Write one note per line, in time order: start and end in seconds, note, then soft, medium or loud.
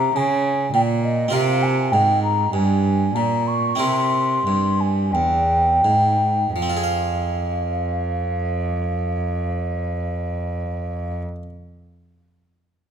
0.00 0.12 C3 medium
0.00 0.14 C3 medium
0.00 1.26 C#4 medium
0.00 1.27 F4 medium
0.00 1.28 A#4 soft
0.00 0.17 A#5 loud
0.15 0.72 C#3 medium
0.15 0.70 C#3 medium
0.15 0.73 G#5 loud
0.73 1.31 A#2 medium
0.73 1.28 A#2 medium
0.73 0.80 G5 medium
1.03 1.34 D#5 medium
1.28 1.93 C3 medium
1.28 3.74 C4 soft
1.28 3.75 F4 soft
1.28 3.76 A#4 soft
1.33 1.88 C3 medium
1.33 1.64 F5 medium
1.62 1.93 G#5 medium
1.91 2.52 G#2 medium
1.91 2.50 G#2 medium
1.91 2.22 G5 medium
2.23 2.53 A#5 medium
2.52 3.14 G2 medium
2.52 3.12 G2 medium
2.52 3.16 G#5 medium
3.15 3.79 A#2 medium
3.15 3.76 A#2 soft
3.15 3.49 A#5 medium
3.47 3.81 C#6 medium
3.75 6.49 C4 soft
3.75 6.49 E4 soft
3.75 6.50 A#4 soft
3.75 4.81 C6 medium
3.79 4.44 C3 medium
3.79 4.42 C3 soft
4.46 5.15 G2 medium
4.46 5.10 G2 soft
4.80 5.14 G#5 medium
5.13 5.86 E2 medium
5.13 5.80 E2 soft
5.13 6.53 G5 medium
5.84 6.54 G#2 soft
5.84 6.51 G#2 soft
6.54 11.21 F2 medium
6.54 11.22 F3 soft
6.54 11.20 F5 medium
6.62 11.28 C4 soft
6.69 11.35 F4 soft
6.77 11.43 G#4 soft
6.84 11.49 F5 soft